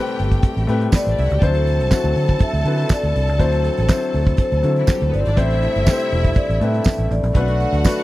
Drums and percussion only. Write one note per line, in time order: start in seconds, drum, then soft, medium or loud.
0.07 closed hi-hat soft
0.19 closed hi-hat medium
0.31 kick medium
0.31 closed hi-hat soft
0.42 kick loud
0.42 closed hi-hat medium
0.57 closed hi-hat soft
0.69 closed hi-hat medium
0.81 closed hi-hat soft
0.92 kick loud
0.92 snare loud
0.92 clap medium
0.92 tambourine medium
1.06 closed hi-hat soft
1.18 open hi-hat medium
1.30 closed hi-hat medium
1.42 kick loud
1.42 closed hi-hat medium
1.54 closed hi-hat soft
1.67 closed hi-hat medium
1.80 closed hi-hat medium
1.91 kick loud
1.91 snare loud
1.91 clap loud
1.91 tambourine loud
2.04 closed hi-hat soft
2.16 open hi-hat medium
2.28 kick medium
2.28 closed hi-hat soft
2.39 kick loud
2.39 closed hi-hat medium
2.54 closed hi-hat soft
2.65 closed hi-hat medium
2.78 closed hi-hat soft
2.89 kick loud
2.89 snare loud
2.89 clap medium
2.89 tambourine loud
3.03 closed hi-hat medium
3.16 closed hi-hat medium
3.28 closed hi-hat soft
3.39 kick medium
3.39 closed hi-hat medium
3.52 closed hi-hat soft
3.64 closed hi-hat medium
3.77 closed hi-hat medium
3.89 kick loud
3.89 snare loud
3.89 clap loud
3.89 tambourine loud
4.02 closed hi-hat soft
4.13 open hi-hat medium
4.26 kick loud
4.26 closed hi-hat soft
4.37 kick loud
4.37 closed hi-hat medium
4.52 closed hi-hat soft
4.63 closed hi-hat medium
4.76 closed hi-hat soft
4.87 kick loud
4.87 snare loud
4.87 clap medium
4.87 tambourine loud
5.01 closed hi-hat soft
5.14 closed hi-hat medium
5.26 closed hi-hat medium
5.37 kick medium
5.37 closed hi-hat medium
5.50 snare soft
5.50 closed hi-hat soft
5.62 closed hi-hat medium
5.76 closed hi-hat medium
5.86 kick loud
5.86 snare loud
5.86 clap loud
5.86 tambourine loud
6.00 closed hi-hat soft
6.12 open hi-hat medium
6.24 kick medium
6.24 closed hi-hat medium
6.35 kick loud
6.35 closed hi-hat medium
6.50 closed hi-hat soft
6.61 closed hi-hat medium
6.74 closed hi-hat soft
6.84 kick loud
6.84 snare loud
6.84 clap medium
6.84 tambourine medium
6.99 closed hi-hat soft
7.11 closed hi-hat medium
7.24 closed hi-hat medium
7.35 kick loud
7.35 closed hi-hat medium
7.48 closed hi-hat soft
7.60 closed hi-hat medium
7.74 closed hi-hat medium
7.84 kick loud
7.84 snare loud
7.84 clap medium
7.84 tambourine loud
7.98 closed hi-hat soft